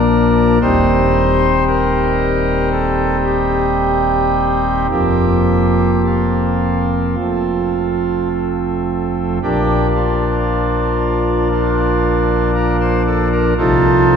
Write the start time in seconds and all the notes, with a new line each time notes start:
Already playing: A#1 A#2 F3 A#3 D4 A#4
0.61 D#1 D#2 G3 C4 D#4 C5
1.67 A#4
2.71 A4
3.24 G4
4.91 F1 F2 F3 A#3 C4 G4
6.05 F4
7.19 F1 F2 F3 A3 C4
9.42 A#1 A#2 F3 A#3 D4 G4
9.95 F4
11.51 F4
12.55 A#4
12.80 C5
13.07 A4
13.32 A#4
13.58 C2 C3 F3 D#4 F4 A4